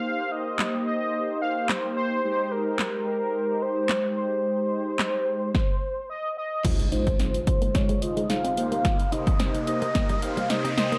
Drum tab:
CC |----------------|----------------|----------------|x---------------|
HH |----------------|----------------|----------------|xxxxxxxxxxxxxxxx|
CP |----x-------x---|----x-------x---|----x-----------|----------------|
SD |----o-------o---|----o-------o---|----o---o-------|o---o---o---o---|
BD |----------------|----------------|--------o-------|o--o--o-o-------|

CC |----------------|
HH |xxxxxxxxxxxxxxxx|
CP |----------------|
SD |o---o---o---o-o-|
BD |o--o----o-------|